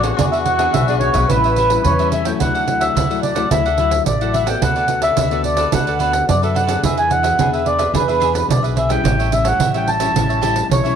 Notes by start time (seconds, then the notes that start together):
Already playing: A1 A2 F#4
0.03 B3 D4 G#4 A4 C#5 F#5, pandeiro
0.17 E2 E3 D4 F#4 G#4 B4 D5 E5, pandeiro
0.32 G#4 B4 E5, pandeiro
0.45 F#5, muted cavaquinho stroke, pandeiro
0.59 B3 D4 G#4 B4 E5, pandeiro
0.73 B1 B2 D4 G#4 B4 E5, pandeiro
0.88 B3 D4 G#4 B4 D5 E5, pandeiro
1.00 C#5, pandeiro
1.14 B1 G#4 B4 E5, pandeiro
1.29 A1 A2 G3 C#4 E4 G4 A4 B4 C#5 E5, pandeiro
1.44 A4 C#5 E5, pandeiro
1.56 G4 A4 C#5 E5, pandeiro
1.70 G3 C#4 E4, muted cavaquinho stroke, pandeiro
1.83 E2 E3 C#4 C#5, pandeiro
1.99 G3 C#4 E4 A4 C#5 E5, pandeiro
2.12 G4 A4 C#5 E5, pandeiro
2.25 F#3 A3 E4 A4 C#5 E5 G5, pandeiro
2.40 D2 D3 E4 A4 D5 F#5, pandeiro
2.55 A4 D5 F#5, pandeiro
2.67 F#3 A3 E4, muted cavaquinho stroke, pandeiro
2.80 A4 D5 E5 F#5, pandeiro
2.95 D2 A2 E4 A4 D5 F#5, pandeiro
3.10 F#3 A3 E4 A4 D5 F#5, pandeiro
3.23 D5, pandeiro
3.35 F#3 A3 E4 A4 D5 F#5, pandeiro
3.51 D2 D3 F#3 A3 E4 A4 D5 E5 F#5, pandeiro
3.66 A4 D5 F#5, pandeiro
3.78 F#3 A3 E4 A4 D5 F#5, pandeiro
3.91 muted cavaquinho stroke, pandeiro
4.06 A1 A2 D5, pandeiro
4.21 F#3 A3 E4 A4 D5 F#5, pandeiro
4.33 E4 A4 D5 E5 F#5, pandeiro
4.46 B3 F#4 A4 D5 F#5 G5, pandeiro
4.61 D2 D3 D4 A4 B4 D5 F#5, pandeiro
4.76 A4 B4 D5, pandeiro
4.88 B3 F#4 A4, muted cavaquinho stroke, pandeiro
5.02 A4 B4 D5 E5, pandeiro
5.16 D2 D3 D4 A4 B4 D5, pandeiro
5.31 B3 F#4 A4 B4 D5, pandeiro
5.44 D5, pandeiro
5.57 A4 B4 D5, pandeiro
5.72 D2 D3 B3 D4 F#4 A4 B4 D5 F#5, pandeiro
5.87 A4 B4 D5, pandeiro
5.99 B3 D4 F#4 A4 B4 D5, pandeiro
6.13 muted cavaquinho stroke, pandeiro
6.29 F#2 D3 D5, pandeiro
6.42 B3 F#4 A4 B4 D5 E5, pandeiro
6.54 D4 A4 B4 D5 F#5, pandeiro
6.67 B3 D4 G#4 A4 B4 D5, pandeiro
6.83 E2 E3 D4 G#4 B4 E5, pandeiro
6.97 G#4 B4 E5 G#5, pandeiro
7.10 B3 D4 G#4 F#5, muted cavaquinho stroke, pandeiro
7.23 G#4 B4 E5, pandeiro
7.38 E2 B2 B3 D4 G#4 B4 E5, pandeiro
7.53 G#4 B4 E5, pandeiro
7.66 B3 D4 G#4 D5, pandeiro
7.79 G#4 B4 E5, pandeiro
7.94 E2 E3 B3 D4 G#4 B4 E5, pandeiro
8.08 B3 D4 G#4 B4 E5, pandeiro
8.20 D4 G#4 B4 E5, pandeiro
8.33 B3 D4 G#4, muted cavaquinho stroke, pandeiro
8.49 B1 B2 D5, pandeiro
8.63 G#4 B4 E5, pandeiro
8.76 D4 G#4 B4 E5, pandeiro
8.89 G3 C#4 E4 G#4 B4 E5 G5, pandeiro
9.04 A1 A2 G4 A4 C#5 E5, pandeiro
9.19 A4 C#5 E5, pandeiro
9.32 G3 C#4 E4 E5, muted cavaquinho stroke, pandeiro
9.44 A4 C#5 E5 F#5, pandeiro
9.59 A1 E3 G4 A4 C#5 E5, pandeiro
9.74 G3 C#4 E4 A4 C#5 E5 G5, pandeiro
9.88 A5, pandeiro
10.00 G3 C#4 E4 A4 C#5 E5, pandeiro
10.14 A1 A2 G3 C#4 E4 G4 A4 C#5 E5, pandeiro
10.29 A4 C#5 E5, pandeiro
10.41 G3 C#4 E4 G4 A4 C#5 E5, pandeiro
10.55 muted cavaquinho stroke, pandeiro
10.70 B1 E3 C#5, pandeiro
10.84 G3 C#4 E4 A4 C#5 E5, pandeiro